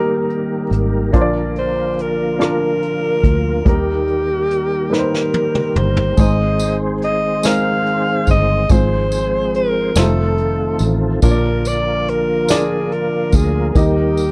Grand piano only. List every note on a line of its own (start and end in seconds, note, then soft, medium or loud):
0.00 1.15 D#3 soft
0.00 1.13 A#3 medium
0.00 1.15 D#4 medium
0.00 1.15 G4 medium
0.00 0.65 A#4 medium
0.00 1.15 D#5 medium
1.13 2.36 A#2 medium
1.13 1.89 A#3 medium
1.13 1.90 D4 medium
1.13 1.90 F4 medium
1.13 1.21 C5 medium
1.21 1.94 D5 medium
2.39 3.16 A#3 medium
2.39 3.16 D4 medium
2.39 3.16 F4 medium
2.39 3.17 A#4 medium
3.65 4.88 D#3 soft
3.65 4.42 G3 medium
3.65 4.42 A#3 medium
3.65 4.43 D#4 medium
3.65 4.43 A#4 medium
4.90 5.67 G3 medium
4.90 5.68 A#3 medium
4.90 5.68 D#4 medium
4.90 4.99 B4 medium
4.99 5.72 C5 medium
6.17 7.40 G#2 soft
6.17 6.94 G#3 medium
6.17 6.94 C4 medium
6.17 6.95 D#4 medium
6.17 6.95 C5 medium
7.43 8.20 G#3 medium
7.43 8.20 C4 medium
7.43 8.21 D#4 medium
7.43 8.21 A#4 medium
8.69 9.93 G#2 medium
8.69 9.46 G#3 medium
8.69 9.47 C4 medium
8.69 9.47 F4 medium
8.69 9.48 C5 medium
9.96 10.03 G3 medium
9.96 10.73 D#4 medium
9.96 10.74 F4 medium
9.96 10.74 C5 medium
10.02 10.76 A3 medium
11.22 12.45 A#2 medium
11.22 11.99 A#3 medium
11.22 11.99 D4 medium
11.22 12.00 F4 medium
11.22 11.30 C#5 medium
11.31 12.03 D5 medium
12.49 13.26 A#3 medium
12.49 13.26 D4 medium
12.49 13.26 F4 medium
12.49 13.27 D5 medium
13.75 14.32 D#3 medium
13.75 14.32 A#3 medium
13.75 14.32 D#4 medium
13.75 14.32 G4 medium
13.75 14.32 D#5 medium